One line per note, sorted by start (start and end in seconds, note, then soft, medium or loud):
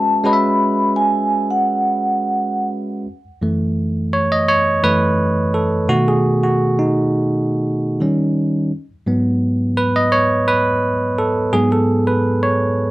0.00 0.22 G#3 medium
0.00 0.23 C#4 soft
0.00 0.24 F#4 soft
0.00 0.24 B4 soft
0.00 0.25 E5 medium
0.00 0.27 A5 medium
0.23 3.02 G#3 medium
0.23 3.02 C#4 medium
0.23 3.03 F#4 medium
0.23 3.03 B4 medium
0.23 0.32 D#5 medium
0.23 0.91 B5 loud
0.33 3.06 E5 medium
0.96 1.46 G#5 medium
1.51 2.68 F#5 medium
3.42 4.43 F#2 soft
3.42 4.43 E3 soft
3.42 4.44 A3 medium
4.13 4.32 C#5 medium
4.32 4.48 D#5 medium
4.49 4.64 C#5 loud
4.83 5.14 F#2 soft
4.83 5.15 E3 soft
4.83 5.15 A3 soft
4.83 5.56 B4 medium
5.54 5.90 A4 medium
5.88 6.36 B2 medium
5.88 6.36 D#3 soft
5.88 6.37 A3 medium
5.88 6.08 F#4 medium
6.08 6.44 G#4 medium
6.43 6.79 F#4 medium
6.79 8.51 D#4 medium
8.01 8.48 D#3 medium
8.01 8.49 G3 medium
8.01 8.49 C#4 medium
9.06 10.08 G#2 medium
9.06 10.08 F#3 medium
9.06 10.09 B3 medium
9.77 9.96 B4 medium
9.96 10.11 D#5 loud
10.12 10.45 C#5 loud
10.48 11.14 B4 loud
11.18 11.54 A4 medium
11.53 12.01 G#2 medium
11.53 12.01 F#3 medium
11.53 12.01 B3 medium
11.53 11.71 G#4 medium
11.72 12.08 A4 medium
12.07 12.44 B4 medium
12.43 12.91 C#5 medium